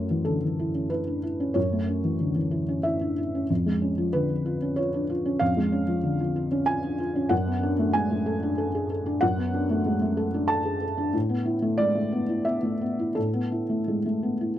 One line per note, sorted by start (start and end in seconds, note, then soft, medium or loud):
0.00 1.53 F#2 soft
0.00 1.59 A3 soft
0.00 0.20 C#4 soft
0.10 0.36 E3 soft
0.25 0.43 D3 soft
0.25 0.90 A4 medium
0.43 0.69 E3 soft
0.59 0.85 E4 soft
0.75 1.01 C#4 soft
0.90 1.17 E4 soft
0.90 1.56 B4 medium
1.07 1.23 D4 soft
1.23 1.50 E4 soft
1.40 1.66 C#4 soft
1.54 3.46 F#2 soft
1.54 2.85 C#5 medium
1.72 1.98 A3 soft
1.88 2.15 C#4 soft
2.04 2.30 E3 soft
2.20 2.37 D3 soft
2.35 2.62 E3 soft
2.51 2.78 E4 soft
2.69 2.95 C#4 soft
2.83 3.11 E4 soft
2.83 3.49 E5 medium
3.01 3.18 D4 soft
3.18 3.44 E4 soft
3.35 3.50 C#4 soft
3.50 5.37 F2 soft
3.66 3.92 G#3 soft
3.82 4.07 C#4 soft
3.98 4.23 F3 soft
4.13 4.30 D3 soft
4.13 4.77 B4 medium
4.30 4.56 F3 soft
4.46 4.71 F4 soft
4.62 4.87 C#4 soft
4.76 5.03 F4 medium
4.76 5.40 C#5 medium
4.94 5.10 D4 soft
5.10 5.35 F4 soft
5.26 5.50 C#4 soft
5.39 7.28 F2 medium
5.39 6.67 F5 medium
5.57 5.82 G#3 soft
5.72 5.98 C#4 soft
5.87 6.13 F3 medium
6.03 6.20 D3 soft
6.20 6.46 F3 soft
6.36 6.61 F4 soft
6.51 6.77 C#4 medium
6.66 6.93 F4 medium
6.66 7.31 G#5 medium
6.84 7.00 D4 soft
7.00 7.25 F4 medium
7.16 7.32 C#4 soft
7.29 9.18 F#2 medium
7.29 7.94 F#5 medium
7.47 7.73 B3 medium
7.63 7.89 D4 medium
7.79 8.05 A3 medium
7.93 8.11 G#3 soft
7.93 9.21 G#5 loud
8.11 8.36 A3 soft
8.26 8.52 A4 medium
8.43 8.68 D4 medium
8.58 8.84 A4 medium
8.75 8.91 G#4 soft
8.90 9.16 A4 medium
9.06 9.32 D4 medium
9.21 11.11 F#2 medium
9.21 10.49 F#5 medium
9.38 9.63 B3 medium
9.54 9.79 D4 medium
9.70 9.95 A3 medium
9.86 10.02 G#3 soft
10.02 10.27 A3 soft
10.17 10.43 A4 medium
10.34 10.60 D4 medium
10.48 10.75 A4 medium
10.48 11.13 A5 medium
10.65 10.82 G#4 soft
10.81 11.08 A4 medium
10.98 11.14 D4 medium
11.13 13.12 A2 medium
11.29 11.56 B3 medium
11.46 11.72 E4 soft
11.62 11.89 A3 soft
11.78 11.96 G#3 soft
11.78 12.46 D5 medium
11.95 12.22 A3 soft
12.12 12.40 B3 soft
12.29 12.57 E4 soft
12.45 12.74 B3 soft
12.45 13.16 E5 medium
12.63 12.81 A3 soft
12.81 13.10 B3 soft
12.99 13.28 E4 soft
13.15 14.59 A2 medium
13.15 14.59 A4 medium
13.34 13.63 B3 soft
13.52 13.81 E4 soft
13.70 13.98 A3 soft
13.88 14.05 G#3 soft
14.06 14.33 A3 soft
14.23 14.51 B3 soft
14.41 14.59 E4 soft